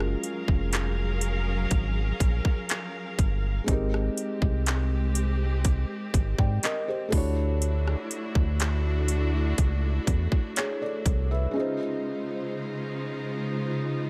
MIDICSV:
0, 0, Header, 1, 5, 480
1, 0, Start_track
1, 0, Tempo, 983607
1, 1795, Time_signature, 4, 2, 24, 8
1, 6880, End_track
2, 0, Start_track
2, 0, Title_t, "Felt piano"
2, 0, Program_c, 0, 0
2, 0, Control_c, 0, 64, 127
2, 0, Note_on_c, 0, 56, 79
2, 0, Note_on_c, 0, 61, 71
2, 0, Note_on_c, 0, 65, 71
2, 0, Note_on_c, 0, 66, 68
2, 0, Note_on_c, 0, 70, 88
2, 1767, Note_off_c, 0, 56, 0
2, 1772, Note_off_c, 0, 61, 0
2, 1777, Note_off_c, 0, 65, 0
2, 1777, Note_on_c, 0, 56, 75
2, 1783, Note_off_c, 0, 66, 0
2, 1787, Note_on_c, 0, 60, 71
2, 1788, Note_off_c, 0, 70, 0
2, 1798, Note_on_c, 0, 63, 72
2, 1801, Control_c, 0, 64, 0
2, 1809, Note_on_c, 0, 67, 69
2, 1819, Note_on_c, 0, 70, 81
2, 1890, Control_c, 0, 64, 127
2, 2743, Note_off_c, 0, 67, 0
2, 2748, Note_off_c, 0, 70, 0
2, 3119, Note_on_c, 0, 79, 65
2, 3123, Note_on_c, 0, 74, 55
2, 3231, Note_off_c, 0, 79, 0
2, 3233, Note_off_c, 0, 74, 0
2, 3240, Note_on_c, 0, 75, 77
2, 3243, Note_on_c, 0, 70, 71
2, 3352, Note_off_c, 0, 75, 0
2, 3353, Note_off_c, 0, 70, 0
2, 3359, Note_on_c, 0, 72, 69
2, 3361, Note_on_c, 0, 67, 62
2, 3447, Note_off_c, 0, 56, 0
2, 3452, Note_off_c, 0, 60, 0
2, 3457, Note_off_c, 0, 63, 0
2, 3458, Note_on_c, 0, 57, 80
2, 3468, Note_on_c, 0, 62, 73
2, 3479, Note_on_c, 0, 64, 70
2, 3482, Control_c, 0, 64, 0
2, 3490, Note_on_c, 0, 66, 73
2, 3501, Note_on_c, 0, 73, 90
2, 3571, Control_c, 0, 64, 127
2, 3585, Note_off_c, 0, 72, 0
2, 3587, Note_off_c, 0, 67, 0
2, 5148, Note_off_c, 0, 73, 0
2, 5158, Note_on_c, 0, 73, 75
2, 5160, Note_on_c, 0, 68, 63
2, 5271, Note_off_c, 0, 73, 0
2, 5272, Note_off_c, 0, 68, 0
2, 5279, Note_on_c, 0, 74, 73
2, 5283, Note_on_c, 0, 69, 63
2, 5367, Note_off_c, 0, 57, 0
2, 5372, Note_off_c, 0, 62, 0
2, 5378, Note_off_c, 0, 64, 0
2, 5383, Note_off_c, 0, 66, 0
2, 5506, Note_off_c, 0, 74, 0
2, 5507, Note_off_c, 0, 69, 0
2, 5520, Note_on_c, 0, 76, 67
2, 5523, Note_on_c, 0, 71, 60
2, 5618, Note_on_c, 0, 56, 76
2, 5628, Note_on_c, 0, 61, 74
2, 5639, Note_on_c, 0, 63, 75
2, 5641, Control_c, 0, 64, 0
2, 5649, Note_on_c, 0, 65, 70
2, 5660, Note_on_c, 0, 72, 86
2, 5732, Control_c, 0, 64, 127
2, 5746, Note_off_c, 0, 76, 0
2, 5747, Note_off_c, 0, 71, 0
2, 6880, Note_off_c, 0, 56, 0
2, 6880, Note_off_c, 0, 61, 0
2, 6880, Note_off_c, 0, 63, 0
2, 6880, Note_off_c, 0, 65, 0
2, 6880, Note_off_c, 0, 72, 0
2, 6880, End_track
3, 0, Start_track
3, 0, Title_t, "String section"
3, 0, Program_c, 1, 48
3, 0, Note_on_c, 1, 54, 82
3, 0, Note_on_c, 1, 61, 75
3, 0, Note_on_c, 1, 68, 75
3, 0, Note_on_c, 1, 70, 86
3, 0, Note_on_c, 1, 77, 74
3, 1776, Note_off_c, 1, 54, 0
3, 1776, Note_off_c, 1, 61, 0
3, 1776, Note_off_c, 1, 77, 0
3, 1777, Note_off_c, 1, 68, 0
3, 1777, Note_off_c, 1, 70, 0
3, 1795, Note_on_c, 1, 56, 81
3, 1795, Note_on_c, 1, 60, 77
3, 1795, Note_on_c, 1, 67, 93
3, 3458, Note_off_c, 1, 56, 0
3, 3459, Note_off_c, 1, 60, 0
3, 3459, Note_off_c, 1, 67, 0
3, 3474, Note_on_c, 1, 57, 81
3, 3474, Note_on_c, 1, 62, 85
3, 3474, Note_on_c, 1, 66, 95
3, 3475, Note_on_c, 1, 64, 88
3, 5615, Note_off_c, 1, 57, 0
3, 5615, Note_off_c, 1, 62, 0
3, 5615, Note_off_c, 1, 64, 0
3, 5615, Note_off_c, 1, 66, 0
3, 5634, Note_on_c, 1, 49, 81
3, 5635, Note_on_c, 1, 56, 76
3, 5635, Note_on_c, 1, 63, 73
3, 5635, Note_on_c, 1, 65, 88
3, 5636, Note_on_c, 1, 72, 71
3, 6880, Note_off_c, 1, 49, 0
3, 6880, Note_off_c, 1, 56, 0
3, 6880, Note_off_c, 1, 63, 0
3, 6880, Note_off_c, 1, 65, 0
3, 6880, Note_off_c, 1, 72, 0
3, 6880, End_track
4, 0, Start_track
4, 0, Title_t, "Analog synth bass"
4, 0, Program_c, 2, 38
4, 0, Note_on_c, 2, 30, 106
4, 80, Note_off_c, 2, 30, 0
4, 236, Note_on_c, 2, 29, 82
4, 816, Note_off_c, 2, 29, 0
4, 836, Note_on_c, 2, 32, 108
4, 1040, Note_off_c, 2, 32, 0
4, 1077, Note_on_c, 2, 34, 100
4, 1178, Note_off_c, 2, 34, 0
4, 1557, Note_on_c, 2, 31, 94
4, 1760, Note_off_c, 2, 31, 0
4, 1797, Note_on_c, 2, 32, 119
4, 2000, Note_off_c, 2, 32, 0
4, 2157, Note_on_c, 2, 36, 80
4, 2857, Note_off_c, 2, 36, 0
4, 2997, Note_on_c, 2, 32, 98
4, 3098, Note_off_c, 2, 32, 0
4, 3117, Note_on_c, 2, 44, 97
4, 3218, Note_off_c, 2, 44, 0
4, 3478, Note_on_c, 2, 38, 104
4, 3885, Note_off_c, 2, 38, 0
4, 4078, Note_on_c, 2, 38, 82
4, 4657, Note_off_c, 2, 38, 0
4, 4677, Note_on_c, 2, 37, 93
4, 4880, Note_off_c, 2, 37, 0
4, 4917, Note_on_c, 2, 40, 93
4, 5018, Note_off_c, 2, 40, 0
4, 5397, Note_on_c, 2, 36, 95
4, 5600, Note_off_c, 2, 36, 0
4, 6880, End_track
5, 0, Start_track
5, 0, Title_t, "Drums"
5, 2, Note_on_c, 9, 37, 87
5, 51, Note_off_c, 9, 37, 0
5, 115, Note_on_c, 9, 42, 60
5, 164, Note_off_c, 9, 42, 0
5, 235, Note_on_c, 9, 36, 95
5, 284, Note_off_c, 9, 36, 0
5, 354, Note_on_c, 9, 42, 75
5, 360, Note_on_c, 9, 39, 116
5, 403, Note_off_c, 9, 42, 0
5, 409, Note_off_c, 9, 39, 0
5, 592, Note_on_c, 9, 42, 78
5, 641, Note_off_c, 9, 42, 0
5, 833, Note_on_c, 9, 42, 70
5, 835, Note_on_c, 9, 36, 92
5, 882, Note_off_c, 9, 42, 0
5, 884, Note_off_c, 9, 36, 0
5, 1075, Note_on_c, 9, 36, 104
5, 1076, Note_on_c, 9, 42, 69
5, 1124, Note_off_c, 9, 36, 0
5, 1125, Note_off_c, 9, 42, 0
5, 1195, Note_on_c, 9, 36, 100
5, 1244, Note_off_c, 9, 36, 0
5, 1313, Note_on_c, 9, 42, 80
5, 1320, Note_on_c, 9, 39, 120
5, 1362, Note_off_c, 9, 42, 0
5, 1369, Note_off_c, 9, 39, 0
5, 1555, Note_on_c, 9, 36, 102
5, 1555, Note_on_c, 9, 42, 72
5, 1604, Note_off_c, 9, 36, 0
5, 1604, Note_off_c, 9, 42, 0
5, 1795, Note_on_c, 9, 36, 117
5, 1796, Note_on_c, 9, 42, 78
5, 1844, Note_off_c, 9, 36, 0
5, 1845, Note_off_c, 9, 42, 0
5, 1923, Note_on_c, 9, 37, 93
5, 1972, Note_off_c, 9, 37, 0
5, 2037, Note_on_c, 9, 42, 61
5, 2086, Note_off_c, 9, 42, 0
5, 2156, Note_on_c, 9, 36, 99
5, 2205, Note_off_c, 9, 36, 0
5, 2276, Note_on_c, 9, 42, 80
5, 2282, Note_on_c, 9, 39, 115
5, 2325, Note_off_c, 9, 42, 0
5, 2330, Note_off_c, 9, 39, 0
5, 2514, Note_on_c, 9, 42, 78
5, 2563, Note_off_c, 9, 42, 0
5, 2755, Note_on_c, 9, 42, 73
5, 2756, Note_on_c, 9, 36, 95
5, 2804, Note_off_c, 9, 42, 0
5, 2805, Note_off_c, 9, 36, 0
5, 2996, Note_on_c, 9, 36, 107
5, 2997, Note_on_c, 9, 42, 67
5, 3045, Note_off_c, 9, 36, 0
5, 3046, Note_off_c, 9, 42, 0
5, 3116, Note_on_c, 9, 36, 97
5, 3165, Note_off_c, 9, 36, 0
5, 3235, Note_on_c, 9, 42, 77
5, 3242, Note_on_c, 9, 39, 122
5, 3284, Note_off_c, 9, 42, 0
5, 3291, Note_off_c, 9, 39, 0
5, 3476, Note_on_c, 9, 36, 117
5, 3477, Note_on_c, 9, 46, 80
5, 3525, Note_off_c, 9, 36, 0
5, 3526, Note_off_c, 9, 46, 0
5, 3717, Note_on_c, 9, 42, 76
5, 3766, Note_off_c, 9, 42, 0
5, 3843, Note_on_c, 9, 37, 90
5, 3892, Note_off_c, 9, 37, 0
5, 3957, Note_on_c, 9, 42, 64
5, 4005, Note_off_c, 9, 42, 0
5, 4076, Note_on_c, 9, 36, 100
5, 4125, Note_off_c, 9, 36, 0
5, 4196, Note_on_c, 9, 42, 81
5, 4201, Note_on_c, 9, 39, 113
5, 4244, Note_off_c, 9, 42, 0
5, 4250, Note_off_c, 9, 39, 0
5, 4433, Note_on_c, 9, 42, 80
5, 4482, Note_off_c, 9, 42, 0
5, 4675, Note_on_c, 9, 42, 71
5, 4676, Note_on_c, 9, 36, 90
5, 4724, Note_off_c, 9, 42, 0
5, 4725, Note_off_c, 9, 36, 0
5, 4916, Note_on_c, 9, 36, 102
5, 4917, Note_on_c, 9, 42, 66
5, 4964, Note_off_c, 9, 36, 0
5, 4966, Note_off_c, 9, 42, 0
5, 5035, Note_on_c, 9, 36, 99
5, 5084, Note_off_c, 9, 36, 0
5, 5155, Note_on_c, 9, 42, 84
5, 5161, Note_on_c, 9, 39, 119
5, 5204, Note_off_c, 9, 42, 0
5, 5210, Note_off_c, 9, 39, 0
5, 5395, Note_on_c, 9, 36, 99
5, 5397, Note_on_c, 9, 42, 73
5, 5444, Note_off_c, 9, 36, 0
5, 5445, Note_off_c, 9, 42, 0
5, 6880, End_track
0, 0, End_of_file